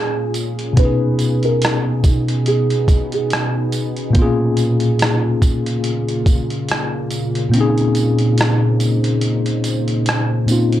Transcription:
0.00 0.72 A#2 medium
0.00 0.74 A#2 medium
0.00 0.73 A#3 medium
0.00 0.74 A#3 medium
0.00 0.74 C#4 medium
0.00 4.12 C#4 medium
0.00 0.74 F4 medium
0.00 0.76 F4 medium
0.00 0.32 G#4 medium
0.00 0.80 G#4 medium
0.00 10.80 G#4 medium
0.34 closed hi-hat medium
0.34 tambourine medium
0.59 closed hi-hat soft
0.73 4.09 B2 medium
0.73 4.11 B3 medium
0.73 closed hi-hat medium
0.77 4.12 B2 medium
0.77 4.12 B3 medium
0.77 4.12 C#4 medium
0.77 4.12 D#4 medium
0.77 1.40 B4 medium
0.77 kick loud
0.82 4.14 D#4 medium
0.82 4.15 G#4 medium
1.19 closed hi-hat medium
1.19 tambourine soft
1.43 1.82 A#4 medium
1.43 closed hi-hat soft
1.62 cross-stick loud
1.62 closed hi-hat medium
2.04 kick medium
2.04 closed hi-hat medium
2.04 tambourine medium
2.28 closed hi-hat soft
2.46 3.09 G#4 medium
2.46 closed hi-hat medium
2.70 closed hi-hat soft
2.88 kick loud
2.88 closed hi-hat medium
2.88 tambourine soft
3.12 3.30 G#4 medium
3.12 closed hi-hat soft
3.30 cross-stick loud
3.30 closed hi-hat medium
3.72 closed hi-hat medium
3.72 tambourine medium
3.96 closed hi-hat soft
4.10 7.47 A#2 medium
4.10 7.48 A#3 medium
4.15 10.80 A#2 medium
4.15 10.80 C#3 medium
4.15 10.80 A#3 medium
4.15 4.23 B3 medium
4.15 7.50 F4 medium
4.15 kick loud
4.15 closed hi-hat medium
4.19 7.53 C#4 medium
4.19 7.51 F4 medium
4.19 7.53 G#4 medium
4.57 closed hi-hat medium
4.57 tambourine soft
4.80 closed hi-hat medium
4.99 cross-stick loud
4.99 closed hi-hat medium
5.42 kick medium
5.42 closed hi-hat medium
5.42 tambourine medium
5.66 closed hi-hat soft
5.84 closed hi-hat medium
6.09 closed hi-hat soft
6.26 kick loud
6.26 closed hi-hat medium
6.26 tambourine soft
6.50 closed hi-hat soft
6.69 cross-stick loud
6.69 closed hi-hat medium
7.11 closed hi-hat medium
7.11 tambourine medium
7.35 closed hi-hat soft
7.49 10.43 A#2 medium
7.49 10.44 A#3 medium
7.54 10.45 C4 medium
7.54 10.47 C#4 medium
7.54 10.80 D#4 medium
7.54 10.80 C5 medium
7.54 closed hi-hat medium
7.58 10.48 D#4 medium
7.58 10.49 G#4 medium
7.78 closed hi-hat soft
7.95 closed hi-hat medium
7.95 tambourine soft
8.19 closed hi-hat soft
8.38 cross-stick loud
8.38 closed hi-hat medium
8.80 closed hi-hat medium
8.80 tambourine medium
9.04 closed hi-hat soft
9.21 closed hi-hat medium
9.46 closed hi-hat soft
9.64 closed hi-hat medium
9.64 tambourine soft
9.88 closed hi-hat soft
10.06 cross-stick medium
10.06 closed hi-hat medium
10.46 10.80 A#2 medium
10.46 10.80 A#3 medium
10.46 10.80 C4 medium
10.46 10.80 C#4 medium
10.46 closed hi-hat medium
10.46 tambourine medium
10.51 10.80 D#4 soft
10.51 10.80 F4 medium
10.72 closed hi-hat soft

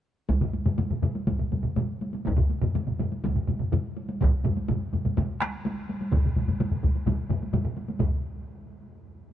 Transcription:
0.29 taiko medium
0.29 taiko high medium
0.41 taiko low-mid medium
0.41 taiko mid medium
0.53 taiko high soft
0.66 taiko low-mid medium
0.66 taiko mid medium
0.66 taiko high soft
0.78 taiko low-mid medium
0.78 taiko mid medium
0.78 taiko high medium
0.90 taiko low-mid medium
0.90 taiko mid medium
1.02 taiko low-mid medium
1.02 taiko mid medium
1.02 taiko high soft
1.15 taiko high soft
1.27 taiko medium
1.27 taiko low-mid medium
1.27 taiko mid medium
1.27 taiko high medium
1.40 taiko low-mid medium
1.40 taiko mid medium
1.52 taiko low-mid medium
1.52 taiko mid medium
1.52 taiko high soft
1.64 taiko low-mid medium
1.64 taiko mid medium
1.76 taiko low-mid medium
1.76 taiko mid medium
1.76 taiko high medium
2.01 taiko high soft
2.13 taiko high soft
2.26 taiko medium
2.26 taiko high medium
2.38 taiko low-mid medium
2.38 taiko mid medium
2.50 taiko high soft
2.62 taiko low-mid medium
2.62 taiko mid medium
2.62 taiko high soft
2.74 taiko low-mid medium
2.74 taiko mid medium
2.74 taiko high medium
2.87 taiko low-mid medium
2.87 taiko mid medium
2.99 taiko low-mid medium
2.99 taiko mid medium
2.99 taiko high soft
3.12 taiko high soft
3.24 taiko medium
3.24 taiko low-mid medium
3.24 taiko mid medium
3.24 taiko high medium
3.35 taiko low-mid medium
3.35 taiko mid medium
3.48 taiko low-mid medium
3.48 taiko mid medium
3.48 taiko high soft
3.60 taiko low-mid medium
3.60 taiko mid medium
3.72 taiko low-mid medium
3.72 taiko mid medium
3.72 taiko high medium
3.97 taiko high soft
4.09 taiko high soft
4.21 taiko medium
4.21 taiko low-mid medium
4.21 taiko mid medium
4.21 taiko high medium
4.45 taiko low-mid medium
4.45 taiko mid medium
4.45 taiko high medium
4.57 taiko high soft
4.68 taiko low-mid medium
4.68 taiko mid medium
4.68 taiko high medium
4.93 taiko low-mid medium
4.93 taiko mid medium
4.93 taiko high soft
5.05 taiko low-mid medium
5.05 taiko mid medium
5.05 taiko high soft
5.17 taiko medium
5.17 taiko low-mid medium
5.17 taiko mid medium
5.17 taiko high medium
5.42 taiko rim medium
5.42 taiko high soft
5.65 taiko high medium
5.89 taiko high soft
6.01 taiko high soft
6.12 taiko medium
6.12 taiko low-mid medium
6.12 taiko mid soft
6.12 taiko high medium
6.24 taiko low-mid medium
6.24 taiko mid medium
6.36 taiko low-mid medium
6.36 taiko mid medium
6.36 taiko high soft
6.48 taiko low-mid medium
6.48 taiko mid medium
6.48 taiko high soft
6.60 taiko low-mid medium
6.60 taiko mid medium
6.60 taiko high medium
6.71 taiko low-mid medium
6.71 taiko mid medium
6.83 taiko medium
6.83 taiko low-mid medium
6.83 taiko mid medium
6.83 taiko high soft
6.96 taiko high soft
7.06 taiko medium
7.06 taiko low-mid medium
7.06 taiko mid medium
7.06 taiko high medium
7.29 taiko low-mid medium
7.29 taiko mid medium
7.29 taiko high soft
7.43 taiko high soft
7.53 taiko low-mid medium
7.53 taiko mid medium
7.53 taiko high medium
7.64 taiko low-mid medium
7.64 taiko mid medium
7.77 taiko high soft
7.88 taiko high soft
7.99 taiko medium
7.99 taiko low-mid medium
7.99 taiko mid medium
7.99 taiko high medium

